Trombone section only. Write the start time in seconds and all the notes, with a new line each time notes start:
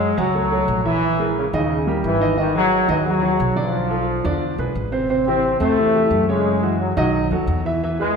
Already playing: G#3
0.20 F#3
0.85 E3
1.38 C#3
1.54 C#3
2.05 E3
2.38 D#3
2.56 F#3
2.91 E3
3.08 F#3
3.58 F3
5.27 C4
5.60 A3
6.27 G#3
6.80 F#3
6.96 F#3
8.00 G#3